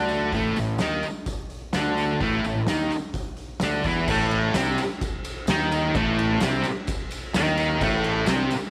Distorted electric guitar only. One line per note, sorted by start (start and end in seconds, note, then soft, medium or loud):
0.00 0.33 D3 medium
0.00 0.33 D4 loud
0.34 0.56 A2 medium
0.34 0.56 A3 loud
0.57 0.76 A2 medium
0.80 1.03 D#3 medium
0.80 1.03 D#4 medium
1.75 2.21 D3 medium
1.75 2.21 D4 medium
2.21 2.44 A2 loud
2.21 2.44 A3 loud
2.46 2.64 A2 medium
2.68 2.91 D#3 medium
2.68 2.91 D#4 loud
3.62 3.85 D3 medium
3.62 3.85 D4 loud
3.86 4.08 E3 medium
3.86 4.09 E4 medium
4.09 4.55 A2 loud
4.09 4.55 A3 loud
4.56 4.78 C3 medium
4.56 4.78 C4 medium
5.49 5.95 D#3 loud
5.49 5.95 D#4 loud
5.96 6.41 A2 loud
5.96 6.42 A3 loud
6.43 6.65 C3 medium
6.43 6.65 C4 loud
7.35 7.81 D#3 loud
7.35 7.81 D#4 loud
7.82 8.27 A2 loud
7.82 8.28 A3 loud
8.28 8.51 C3 medium
8.28 8.51 C4 loud